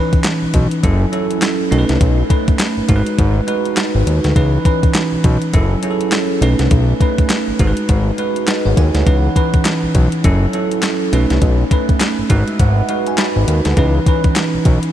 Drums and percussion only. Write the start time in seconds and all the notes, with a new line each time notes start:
0.13 kick, closed hi-hat
0.24 snare, clap, closed hi-hat
0.54 kick, closed hi-hat
0.71 closed hi-hat
0.83 kick, closed hi-hat
1.13 closed hi-hat
1.31 closed hi-hat
1.42 snare, clap, closed hi-hat
1.72 closed hi-hat
1.89 snare, closed hi-hat
2.01 kick, closed hi-hat
2.30 kick, closed hi-hat
2.48 kick, closed hi-hat
2.59 snare, clap, closed hi-hat
2.89 kick, closed hi-hat
3.06 closed hi-hat
3.19 kick, closed hi-hat
3.48 closed hi-hat
3.65 closed hi-hat
3.77 snare, clap, closed hi-hat
4.07 closed hi-hat
4.24 snare, closed hi-hat
4.36 kick, closed hi-hat
4.65 kick, closed hi-hat
4.83 kick, closed hi-hat
4.94 snare, clap, closed hi-hat
5.24 kick, closed hi-hat
5.42 closed hi-hat
5.54 kick, closed hi-hat
5.83 closed hi-hat
6.01 closed hi-hat
6.12 snare, clap, closed hi-hat
6.42 closed hi-hat
6.59 snare, closed hi-hat
6.71 kick, closed hi-hat
7.00 kick, closed hi-hat
7.18 kick, closed hi-hat
7.30 snare, clap, closed hi-hat
7.59 kick, closed hi-hat
7.77 closed hi-hat
7.89 kick, closed hi-hat
8.18 closed hi-hat
8.36 closed hi-hat
8.47 snare, clap, closed hi-hat
8.77 kick, closed hi-hat
8.95 snare, closed hi-hat
9.07 kick, closed hi-hat
9.36 kick, closed hi-hat
9.54 kick, closed hi-hat
9.65 snare, clap, closed hi-hat
9.95 kick, closed hi-hat
10.12 closed hi-hat
10.24 kick, closed hi-hat
10.53 closed hi-hat
10.71 closed hi-hat
10.83 snare, clap, closed hi-hat
11.13 closed hi-hat
11.30 snare, closed hi-hat
11.42 kick, closed hi-hat
11.71 kick, closed hi-hat
11.89 kick, closed hi-hat
12.00 snare, clap, closed hi-hat
12.30 kick, closed hi-hat
12.48 closed hi-hat
12.59 kick, closed hi-hat
12.89 closed hi-hat
13.07 closed hi-hat
13.18 snare, clap, closed hi-hat
13.48 closed hi-hat
13.65 snare, closed hi-hat
13.77 kick, closed hi-hat
14.06 kick, closed hi-hat
14.24 kick, closed hi-hat
14.36 snare, clap, closed hi-hat
14.65 kick, closed hi-hat
14.83 closed hi-hat